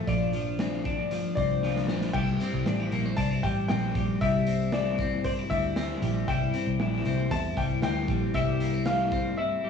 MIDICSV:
0, 0, Header, 1, 5, 480
1, 0, Start_track
1, 0, Tempo, 516796
1, 68, Time_signature, 4, 2, 24, 8
1, 9008, End_track
2, 0, Start_track
2, 0, Title_t, "Upright piano"
2, 0, Program_c, 0, 0
2, 68, Note_on_c, 0, 74, 68
2, 1242, Note_off_c, 0, 74, 0
2, 1256, Note_on_c, 0, 74, 86
2, 1982, Note_on_c, 0, 79, 98
2, 2006, Note_off_c, 0, 74, 0
2, 2940, Note_on_c, 0, 81, 105
2, 2976, Note_off_c, 0, 79, 0
2, 3187, Note_on_c, 0, 79, 91
2, 3194, Note_off_c, 0, 81, 0
2, 3408, Note_off_c, 0, 79, 0
2, 3422, Note_on_c, 0, 79, 93
2, 3873, Note_off_c, 0, 79, 0
2, 3911, Note_on_c, 0, 76, 99
2, 4358, Note_off_c, 0, 76, 0
2, 4390, Note_on_c, 0, 74, 83
2, 4838, Note_off_c, 0, 74, 0
2, 4870, Note_on_c, 0, 72, 91
2, 4925, Note_off_c, 0, 72, 0
2, 5105, Note_on_c, 0, 76, 93
2, 5833, Note_on_c, 0, 79, 90
2, 5851, Note_off_c, 0, 76, 0
2, 6794, Note_on_c, 0, 81, 99
2, 6821, Note_off_c, 0, 79, 0
2, 7016, Note_off_c, 0, 81, 0
2, 7036, Note_on_c, 0, 79, 87
2, 7089, Note_off_c, 0, 79, 0
2, 7276, Note_on_c, 0, 79, 90
2, 7753, Note_on_c, 0, 76, 89
2, 7767, Note_off_c, 0, 79, 0
2, 8231, Note_on_c, 0, 77, 90
2, 8245, Note_off_c, 0, 76, 0
2, 8707, Note_on_c, 0, 76, 78
2, 8724, Note_off_c, 0, 77, 0
2, 9008, Note_off_c, 0, 76, 0
2, 9008, End_track
3, 0, Start_track
3, 0, Title_t, "Clean electric guitar"
3, 0, Program_c, 1, 27
3, 0, Note_on_c, 1, 57, 49
3, 76, Note_on_c, 1, 53, 75
3, 82, Note_on_c, 1, 62, 64
3, 119, Note_off_c, 1, 57, 0
3, 307, Note_off_c, 1, 53, 0
3, 318, Note_on_c, 1, 53, 52
3, 555, Note_on_c, 1, 60, 51
3, 783, Note_off_c, 1, 62, 0
3, 795, Note_on_c, 1, 62, 59
3, 1026, Note_off_c, 1, 53, 0
3, 1037, Note_on_c, 1, 53, 62
3, 1278, Note_off_c, 1, 60, 0
3, 1281, Note_on_c, 1, 60, 50
3, 1506, Note_off_c, 1, 53, 0
3, 1517, Note_on_c, 1, 53, 58
3, 1754, Note_off_c, 1, 60, 0
3, 1758, Note_on_c, 1, 60, 49
3, 1992, Note_off_c, 1, 53, 0
3, 1996, Note_on_c, 1, 55, 78
3, 2000, Note_off_c, 1, 62, 0
3, 2004, Note_on_c, 1, 64, 61
3, 2235, Note_off_c, 1, 60, 0
3, 2239, Note_on_c, 1, 60, 58
3, 2480, Note_off_c, 1, 64, 0
3, 2483, Note_on_c, 1, 62, 64
3, 2601, Note_off_c, 1, 62, 0
3, 2601, Note_on_c, 1, 64, 53
3, 2715, Note_off_c, 1, 60, 0
3, 2719, Note_on_c, 1, 58, 58
3, 2837, Note_off_c, 1, 58, 0
3, 2837, Note_on_c, 1, 60, 47
3, 2952, Note_off_c, 1, 64, 0
3, 2956, Note_on_c, 1, 62, 57
3, 3077, Note_off_c, 1, 62, 0
3, 3077, Note_on_c, 1, 64, 53
3, 3196, Note_off_c, 1, 55, 0
3, 3199, Note_on_c, 1, 55, 58
3, 3426, Note_off_c, 1, 60, 0
3, 3437, Note_on_c, 1, 60, 52
3, 3673, Note_off_c, 1, 55, 0
3, 3677, Note_on_c, 1, 55, 54
3, 3914, Note_off_c, 1, 55, 0
3, 3915, Note_off_c, 1, 64, 0
3, 3918, Note_on_c, 1, 55, 79
3, 3925, Note_on_c, 1, 64, 67
3, 4154, Note_off_c, 1, 60, 0
3, 4158, Note_on_c, 1, 60, 53
3, 4400, Note_off_c, 1, 64, 0
3, 4403, Note_on_c, 1, 64, 65
3, 4638, Note_off_c, 1, 60, 0
3, 4642, Note_on_c, 1, 60, 55
3, 4879, Note_off_c, 1, 64, 0
3, 4882, Note_on_c, 1, 62, 66
3, 5004, Note_off_c, 1, 62, 0
3, 5004, Note_on_c, 1, 64, 50
3, 5120, Note_off_c, 1, 55, 0
3, 5123, Note_on_c, 1, 55, 51
3, 5355, Note_off_c, 1, 60, 0
3, 5358, Note_on_c, 1, 60, 55
3, 5597, Note_off_c, 1, 55, 0
3, 5601, Note_on_c, 1, 55, 58
3, 5835, Note_off_c, 1, 64, 0
3, 5836, Note_off_c, 1, 55, 0
3, 5840, Note_on_c, 1, 55, 83
3, 5846, Note_on_c, 1, 64, 75
3, 6077, Note_off_c, 1, 60, 0
3, 6081, Note_on_c, 1, 60, 58
3, 6319, Note_off_c, 1, 64, 0
3, 6322, Note_on_c, 1, 64, 63
3, 6559, Note_off_c, 1, 60, 0
3, 6562, Note_on_c, 1, 60, 59
3, 6796, Note_off_c, 1, 64, 0
3, 6800, Note_on_c, 1, 64, 69
3, 7035, Note_off_c, 1, 55, 0
3, 7039, Note_on_c, 1, 55, 57
3, 7272, Note_off_c, 1, 60, 0
3, 7276, Note_on_c, 1, 60, 58
3, 7518, Note_off_c, 1, 55, 0
3, 7521, Note_on_c, 1, 55, 58
3, 7752, Note_off_c, 1, 55, 0
3, 7756, Note_on_c, 1, 55, 93
3, 7759, Note_off_c, 1, 64, 0
3, 7762, Note_on_c, 1, 64, 78
3, 7995, Note_off_c, 1, 60, 0
3, 7999, Note_on_c, 1, 58, 60
3, 8119, Note_off_c, 1, 58, 0
3, 8119, Note_on_c, 1, 60, 47
3, 8466, Note_off_c, 1, 60, 0
3, 8477, Note_on_c, 1, 60, 64
3, 8714, Note_off_c, 1, 64, 0
3, 8718, Note_on_c, 1, 64, 68
3, 8952, Note_off_c, 1, 55, 0
3, 8956, Note_on_c, 1, 55, 53
3, 9008, Note_off_c, 1, 55, 0
3, 9008, Note_off_c, 1, 60, 0
3, 9008, Note_off_c, 1, 64, 0
3, 9008, End_track
4, 0, Start_track
4, 0, Title_t, "Picked electric bass"
4, 0, Program_c, 2, 34
4, 70, Note_on_c, 2, 34, 85
4, 1234, Note_off_c, 2, 34, 0
4, 1274, Note_on_c, 2, 36, 72
4, 1754, Note_off_c, 2, 36, 0
4, 1754, Note_on_c, 2, 34, 83
4, 1957, Note_off_c, 2, 34, 0
4, 1990, Note_on_c, 2, 36, 85
4, 2195, Note_off_c, 2, 36, 0
4, 2349, Note_on_c, 2, 36, 95
4, 2452, Note_off_c, 2, 36, 0
4, 2470, Note_on_c, 2, 33, 87
4, 2675, Note_off_c, 2, 33, 0
4, 2709, Note_on_c, 2, 34, 80
4, 2915, Note_off_c, 2, 34, 0
4, 2954, Note_on_c, 2, 36, 89
4, 3157, Note_off_c, 2, 36, 0
4, 3194, Note_on_c, 2, 33, 76
4, 3397, Note_off_c, 2, 33, 0
4, 3437, Note_on_c, 2, 34, 83
4, 3639, Note_off_c, 2, 34, 0
4, 3672, Note_on_c, 2, 34, 84
4, 3876, Note_off_c, 2, 34, 0
4, 3914, Note_on_c, 2, 36, 100
4, 5077, Note_off_c, 2, 36, 0
4, 5115, Note_on_c, 2, 38, 79
4, 5522, Note_off_c, 2, 38, 0
4, 5593, Note_on_c, 2, 34, 86
4, 5797, Note_off_c, 2, 34, 0
4, 5834, Note_on_c, 2, 36, 106
4, 6037, Note_off_c, 2, 36, 0
4, 6196, Note_on_c, 2, 36, 85
4, 6296, Note_off_c, 2, 36, 0
4, 6312, Note_on_c, 2, 34, 85
4, 6516, Note_off_c, 2, 34, 0
4, 6556, Note_on_c, 2, 36, 80
4, 6758, Note_off_c, 2, 36, 0
4, 6793, Note_on_c, 2, 40, 93
4, 6996, Note_off_c, 2, 40, 0
4, 7032, Note_on_c, 2, 36, 77
4, 7236, Note_off_c, 2, 36, 0
4, 7269, Note_on_c, 2, 38, 105
4, 7474, Note_off_c, 2, 38, 0
4, 7509, Note_on_c, 2, 34, 86
4, 7714, Note_off_c, 2, 34, 0
4, 7749, Note_on_c, 2, 36, 94
4, 8671, Note_off_c, 2, 36, 0
4, 9008, End_track
5, 0, Start_track
5, 0, Title_t, "Drums"
5, 68, Note_on_c, 9, 42, 69
5, 70, Note_on_c, 9, 36, 89
5, 161, Note_off_c, 9, 42, 0
5, 163, Note_off_c, 9, 36, 0
5, 307, Note_on_c, 9, 42, 66
5, 400, Note_off_c, 9, 42, 0
5, 545, Note_on_c, 9, 42, 80
5, 548, Note_on_c, 9, 38, 103
5, 638, Note_off_c, 9, 42, 0
5, 641, Note_off_c, 9, 38, 0
5, 790, Note_on_c, 9, 42, 59
5, 792, Note_on_c, 9, 36, 89
5, 883, Note_off_c, 9, 42, 0
5, 885, Note_off_c, 9, 36, 0
5, 1029, Note_on_c, 9, 42, 87
5, 1122, Note_off_c, 9, 42, 0
5, 1270, Note_on_c, 9, 42, 62
5, 1272, Note_on_c, 9, 36, 71
5, 1363, Note_off_c, 9, 42, 0
5, 1364, Note_off_c, 9, 36, 0
5, 1511, Note_on_c, 9, 38, 49
5, 1604, Note_off_c, 9, 38, 0
5, 1633, Note_on_c, 9, 38, 55
5, 1726, Note_off_c, 9, 38, 0
5, 1749, Note_on_c, 9, 38, 78
5, 1842, Note_off_c, 9, 38, 0
5, 1870, Note_on_c, 9, 38, 65
5, 1963, Note_off_c, 9, 38, 0
5, 1989, Note_on_c, 9, 49, 81
5, 1991, Note_on_c, 9, 36, 94
5, 2082, Note_off_c, 9, 49, 0
5, 2084, Note_off_c, 9, 36, 0
5, 2229, Note_on_c, 9, 42, 72
5, 2322, Note_off_c, 9, 42, 0
5, 2470, Note_on_c, 9, 42, 76
5, 2473, Note_on_c, 9, 38, 104
5, 2563, Note_off_c, 9, 42, 0
5, 2566, Note_off_c, 9, 38, 0
5, 2710, Note_on_c, 9, 42, 60
5, 2803, Note_off_c, 9, 42, 0
5, 2952, Note_on_c, 9, 42, 90
5, 2953, Note_on_c, 9, 36, 81
5, 3044, Note_off_c, 9, 42, 0
5, 3046, Note_off_c, 9, 36, 0
5, 3192, Note_on_c, 9, 42, 54
5, 3193, Note_on_c, 9, 36, 75
5, 3285, Note_off_c, 9, 42, 0
5, 3286, Note_off_c, 9, 36, 0
5, 3431, Note_on_c, 9, 38, 103
5, 3434, Note_on_c, 9, 42, 85
5, 3523, Note_off_c, 9, 38, 0
5, 3527, Note_off_c, 9, 42, 0
5, 3671, Note_on_c, 9, 36, 100
5, 3671, Note_on_c, 9, 42, 75
5, 3764, Note_off_c, 9, 36, 0
5, 3764, Note_off_c, 9, 42, 0
5, 3911, Note_on_c, 9, 42, 67
5, 3912, Note_on_c, 9, 36, 91
5, 4004, Note_off_c, 9, 42, 0
5, 4005, Note_off_c, 9, 36, 0
5, 4147, Note_on_c, 9, 42, 66
5, 4240, Note_off_c, 9, 42, 0
5, 4385, Note_on_c, 9, 42, 78
5, 4388, Note_on_c, 9, 38, 102
5, 4478, Note_off_c, 9, 42, 0
5, 4481, Note_off_c, 9, 38, 0
5, 4626, Note_on_c, 9, 42, 60
5, 4633, Note_on_c, 9, 36, 97
5, 4719, Note_off_c, 9, 42, 0
5, 4725, Note_off_c, 9, 36, 0
5, 4870, Note_on_c, 9, 42, 87
5, 4873, Note_on_c, 9, 36, 79
5, 4962, Note_off_c, 9, 42, 0
5, 4966, Note_off_c, 9, 36, 0
5, 5114, Note_on_c, 9, 36, 75
5, 5115, Note_on_c, 9, 42, 61
5, 5207, Note_off_c, 9, 36, 0
5, 5207, Note_off_c, 9, 42, 0
5, 5352, Note_on_c, 9, 38, 90
5, 5356, Note_on_c, 9, 42, 89
5, 5445, Note_off_c, 9, 38, 0
5, 5449, Note_off_c, 9, 42, 0
5, 5595, Note_on_c, 9, 42, 73
5, 5688, Note_off_c, 9, 42, 0
5, 5835, Note_on_c, 9, 36, 96
5, 5837, Note_on_c, 9, 42, 72
5, 5928, Note_off_c, 9, 36, 0
5, 5930, Note_off_c, 9, 42, 0
5, 6071, Note_on_c, 9, 42, 74
5, 6164, Note_off_c, 9, 42, 0
5, 6311, Note_on_c, 9, 42, 78
5, 6314, Note_on_c, 9, 38, 115
5, 6404, Note_off_c, 9, 42, 0
5, 6407, Note_off_c, 9, 38, 0
5, 6549, Note_on_c, 9, 42, 65
5, 6642, Note_off_c, 9, 42, 0
5, 6789, Note_on_c, 9, 42, 101
5, 6792, Note_on_c, 9, 36, 82
5, 6882, Note_off_c, 9, 42, 0
5, 6885, Note_off_c, 9, 36, 0
5, 7031, Note_on_c, 9, 42, 67
5, 7032, Note_on_c, 9, 36, 87
5, 7124, Note_off_c, 9, 36, 0
5, 7124, Note_off_c, 9, 42, 0
5, 7267, Note_on_c, 9, 38, 98
5, 7270, Note_on_c, 9, 42, 90
5, 7360, Note_off_c, 9, 38, 0
5, 7363, Note_off_c, 9, 42, 0
5, 7507, Note_on_c, 9, 42, 74
5, 7509, Note_on_c, 9, 36, 102
5, 7600, Note_off_c, 9, 42, 0
5, 7602, Note_off_c, 9, 36, 0
5, 7746, Note_on_c, 9, 42, 75
5, 7750, Note_on_c, 9, 36, 96
5, 7839, Note_off_c, 9, 42, 0
5, 7843, Note_off_c, 9, 36, 0
5, 7990, Note_on_c, 9, 42, 73
5, 8083, Note_off_c, 9, 42, 0
5, 8223, Note_on_c, 9, 42, 81
5, 8226, Note_on_c, 9, 38, 111
5, 8316, Note_off_c, 9, 42, 0
5, 8319, Note_off_c, 9, 38, 0
5, 8464, Note_on_c, 9, 42, 62
5, 8469, Note_on_c, 9, 36, 97
5, 8557, Note_off_c, 9, 42, 0
5, 8562, Note_off_c, 9, 36, 0
5, 9008, End_track
0, 0, End_of_file